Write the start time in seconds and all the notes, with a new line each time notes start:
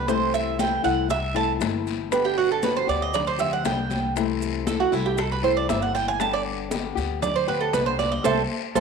Already playing: C2
0.07 C3 E3 A3 C4 E4 C5, high bongo, high conga, long guiro, maracas
0.33 E5, high bongo, high conga, maracas
0.58 E3 A3 C4 E4 G5, high bongo, high conga, short guiro, maracas
0.83 C2 E3 A3 C4 E4 F#5, high bongo, high conga, short guiro, maracas
1.09 E5, muted nylon-string guitar stroke, high bongo, high conga, long guiro, maracas
1.34 E3 A3 C4 E4 A5, high bongo, high conga
1.60 G1 E3 A3 C4 E4, high bongo, low bongo, high conga, short guiro, maracas
1.87 high conga, short guiro, maracas
2.11 D3 G3 B3 G4 B4, high bongo, high conga, long guiro, maracas
2.25 G4
2.38 F#4, high conga
2.52 A4
2.62 D3 G3 B3 G4 B4, high bongo, high conga, short guiro, maracas
2.76 C5
2.87 D2 G3 B3 G4 D5, high conga, short guiro, maracas
3.02 D#5
3.14 D5, muted nylon-string guitar stroke, high bongo, high conga, low conga, long guiro, maracas
3.27 C5
3.38 G3 B3 G4 E5, high conga, low conga, maracas
3.53 F#5
3.64 C2 D3 G3 B3 G4 G5, high bongo, low bongo, high conga, short guiro, maracas
3.90 high conga, short guiro, maracas
4.16 C3 E3 A3 C4 E4, high bongo, high conga, long guiro, maracas
4.42 high bongo, high conga, maracas
4.66 E3 A3 C4 E4 A4, high bongo, high conga, short guiro, maracas
4.80 F#4
4.91 C2 E3 A3 C4 E4, high conga, short guiro, maracas
5.06 G4
5.17 A4, muted nylon-string guitar stroke, high bongo, high conga, long guiro, maracas
5.32 B4
5.43 E3 A3 C4 E4 C5, high bongo, high conga
5.57 D5
5.69 G1 E3 A3 C4 E4 E5, high bongo, low bongo, high conga, short guiro, maracas
5.82 F#5
5.95 G5, high conga, short guiro, maracas
6.08 G#5
6.20 D3 G3 B3 G4 A5, high bongo, high conga, long guiro, maracas
6.34 D5
6.45 high conga
6.70 D3 G3 B3 G4, high bongo, high conga, short guiro, maracas
6.95 D2 G3 B3 G4, high conga, short guiro, maracas
7.22 D5, muted nylon-string guitar stroke, high bongo, high conga, low conga, long guiro, maracas
7.36 C5
7.48 G3 B3 G4 B4, high conga
7.61 A4
7.73 C2 D3 G3 B3 G4 B4, high bongo, low bongo, high conga, short guiro, maracas
7.86 C5
7.99 D5, high conga, short guiro, maracas
8.12 D#5
8.24 C2 G3 A3 C4 A4 C5 E5, low bongo, high conga, long guiro, maracas
8.75 C2 G3 A3 C4 A4 C5 E5, low bongo, high conga, long guiro, maracas